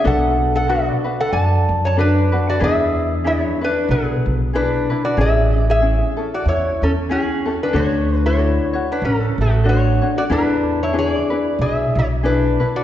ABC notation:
X:1
M:4/4
L:1/16
Q:"Swing" 1/4=94
K:Emix
V:1 name="Resonator guitar played with a steel bar"
[Af]3 [Af] [Fd]3 [Af] [da]3 [ca] [DB]3 [Fd] | [Ge]4 [Ec]2 [DB]2 [B,G]4 [DB]3 [Fd] | [Ge]3 [Ge]4 [Fd] [Ec]2 [CA]2 [CG]3 [DB] | [Fc]3 [Ec]4 [DB] [CA]2 [A,F]2 [Fc]3 [Fd] |
[DB]3 [Ec] [Gd]4 [Ge]2 [Ec]2 [DB]3 [Fd] |]
V:2 name="Ukulele"
[DFAB]4 [DFAB]2 [DFB]6 [DFAB]2 [DFB]2 | [DEGB]4 [DEGB]2 [DEB]6 [DEGB]2 [DEB]2 | [CEG]4 [CEG]2 [CEA]6 [CEG]2 [CEA]2 | [DFAc]4 [DFAc]2 [Fc]6 [DFAc]2 [DFc]2 |
[DEGB]4 [DEGB]2 [DEB]6 [DEGB]2 [DEB]2 |]
V:3 name="Upright bass" clef=bass
B,,,8 F,,2 F,,6 | E,,8 B,,,2 B,,,6 | A,,,8 E,,2 E,,6 | D,,8 A,,,2 A,,,6 |
E,,8 B,,,2 B,,,6 |]